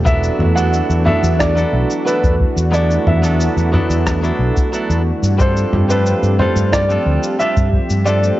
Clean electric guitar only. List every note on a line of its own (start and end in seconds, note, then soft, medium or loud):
0.05 0.52 F#3 medium
0.05 0.52 B3 medium
0.05 0.53 D4 medium
0.05 0.53 E4 medium
0.05 0.53 A4 medium
0.55 1.02 F#3 medium
0.55 1.02 B3 medium
0.55 1.02 D4 medium
0.55 1.03 E4 medium
0.55 1.03 A4 medium
1.05 1.52 F#3 medium
1.05 1.52 B3 medium
1.05 1.53 D4 medium
1.05 1.53 E4 medium
1.05 1.53 A4 medium
1.55 2.02 F#3 medium
1.55 2.02 B3 medium
1.55 2.02 D4 medium
1.55 2.03 E4 medium
1.55 2.03 A4 medium
2.05 2.33 F#3 medium
2.05 2.34 B3 medium
2.05 2.34 D4 medium
2.05 2.35 E4 medium
2.05 2.35 A4 medium
2.72 3.18 F#3 medium
2.72 3.19 B3 medium
2.72 3.19 D4 medium
2.72 3.20 E4 medium
2.72 3.20 A4 medium
3.22 3.68 F#3 medium
3.22 3.69 B3 medium
3.22 3.69 D4 medium
3.22 3.70 E4 medium
3.22 3.70 A4 medium
3.72 4.19 F#3 medium
3.72 4.19 B3 medium
3.72 4.20 D4 medium
3.72 4.20 E4 medium
3.72 4.20 A4 medium
4.21 4.68 F#3 medium
4.21 4.69 B3 medium
4.21 4.69 D4 medium
4.21 4.70 E4 medium
4.21 4.70 A4 loud
4.72 5.00 F#3 medium
4.72 5.01 B3 medium
4.72 5.01 D4 medium
4.72 5.02 E4 medium
4.72 5.02 A4 medium
5.38 5.85 G3 medium
5.38 5.86 C4 medium
5.38 5.86 D4 medium
5.38 5.86 F4 medium
5.38 5.87 A4 medium
5.89 6.35 G3 medium
5.89 6.35 C4 medium
5.89 6.36 D4 medium
5.89 6.36 F4 medium
5.89 6.37 A4 medium
6.39 6.86 G3 medium
6.39 6.86 C4 medium
6.39 6.86 D4 medium
6.39 6.87 F4 medium
6.39 6.87 A4 medium
6.89 7.35 G3 medium
6.89 7.35 C4 medium
6.89 7.36 D4 medium
6.89 7.36 F4 medium
6.89 7.37 A4 medium
7.39 7.67 G3 medium
7.39 7.67 C4 medium
7.39 7.68 D4 medium
7.39 7.68 F4 medium
7.39 7.69 A4 medium
8.05 8.40 G3 medium
8.05 8.40 C4 medium
8.05 8.40 D4 medium
8.05 8.40 F4 medium
8.05 8.40 A4 medium